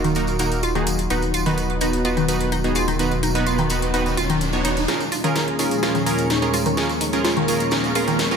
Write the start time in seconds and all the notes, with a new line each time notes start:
Already playing: D#1 A#2 D#3 F#3 A#3 D#4 F#4 A#4
0.04 D#3, closed hi-hat, tambourine
0.15 A#3 D#4 F#4 A#4, closed hi-hat, tambourine
0.27 closed hi-hat, tambourine
0.39 A#3 D#4 F#4 A#4, closed hi-hat, tambourine
0.52 closed hi-hat, tambourine
0.63 F4, closed hi-hat, tambourine
0.75 D#3 A#3 D#4 F#4 G#4, closed hi-hat, tambourine
0.87 closed hi-hat, tambourine
0.98 closed hi-hat, tambourine
1.10 D#1 B2 D#3 B3 D#4 F#4 B4, closed hi-hat, tambourine, riser
1.22 closed hi-hat, tambourine
1.34 F4, closed hi-hat, tambourine
1.46 D#3 B3 D#4 F#4 B4, closed hi-hat
1.58 closed hi-hat, tambourine
1.70 closed hi-hat
1.81 B3 D#4 F#4 B4, closed hi-hat, tambourine
1.93 closed hi-hat
2.05 B3 D#4 F4 F#4 B4, closed hi-hat, tambourine
2.17 D#3, closed hi-hat, tambourine
2.28 B3 D#4 F#4 B4, closed hi-hat, tambourine
2.41 closed hi-hat, tambourine
2.52 D#4, closed hi-hat, tambourine
2.64 B3 D#4 F#4 G#4, closed hi-hat, tambourine
2.75 F4, closed hi-hat, tambourine
2.88 D#3, closed hi-hat, tambourine
2.99 B3 D#4 F#4 B4, closed hi-hat, tambourine
3.12 closed hi-hat, tambourine
3.23 D#4, closed hi-hat, tambourine
3.35 B3 D#4 F#4 B4, closed hi-hat, tambourine
3.46 F4, closed hi-hat, tambourine
3.58 D#3, closed hi-hat, tambourine
3.70 B3 D#4 F#4 B4, closed hi-hat, tambourine
3.82 closed hi-hat, tambourine
3.94 B3 D#4 F#4 B4, closed hi-hat, tambourine
4.06 closed hi-hat, tambourine
4.17 F4, closed hi-hat, tambourine
4.30 D#3, closed hi-hat, tambourine
4.41 closed hi-hat, tambourine
4.53 B3 D#4 F#4 C#5, closed hi-hat, tambourine
4.65 B3 D#4 F#4 C#5, closed hi-hat, tambourine
4.77 closed hi-hat, tambourine
4.88 D#2 A#2 F3 G#3 C#4 D#4 F4 G#4 A#4 C#6, snare, closed hi-hat, tambourine, riser
5.00 closed hi-hat, tambourine
5.12 F4, open hi-hat, tambourine
5.24 D#3 C#4 F4 G#4 A#4, closed hi-hat, tambourine
5.35 snare, closed hi-hat, tambourine
5.48 closed hi-hat
5.59 C#4 D#4 F4 G#4 A#4, open hi-hat, tambourine
5.71 closed hi-hat, tambourine
5.83 C#4 F4 G#4 A#4, snare, closed hi-hat, tambourine
5.95 D#3, closed hi-hat, tambourine
6.06 C#4 F4 G#4 A#4, open hi-hat, tambourine
6.18 closed hi-hat, tambourine
6.30 D#4, snare, closed hi-hat, tambourine
6.42 C#4 F4 G#4 A#4, closed hi-hat, tambourine
6.54 F4, open hi-hat, tambourine
6.66 D#3, closed hi-hat, tambourine
6.77 C#4 F4 G#4 A#4, snare, closed hi-hat, tambourine
6.89 closed hi-hat, tambourine
7.01 D#4, open hi-hat, tambourine
7.13 C#4 F4 G#4 A#4, closed hi-hat, tambourine
7.25 F4, snare, closed hi-hat, tambourine
7.37 D#3, closed hi-hat
7.48 C#4 F4 G#4 A#4, open hi-hat, tambourine
7.60 closed hi-hat, tambourine
7.71 C#4 D#4 F4 G#4 A#4, snare, closed hi-hat, tambourine
7.84 closed hi-hat, tambourine
7.95 C#4 F4 G#4 A#4, open hi-hat, tambourine
8.08 D#3, closed hi-hat, tambourine
8.19 snare, closed hi-hat, tambourine
8.31 C#4 F4 G#4 A#4, closed hi-hat, tambourine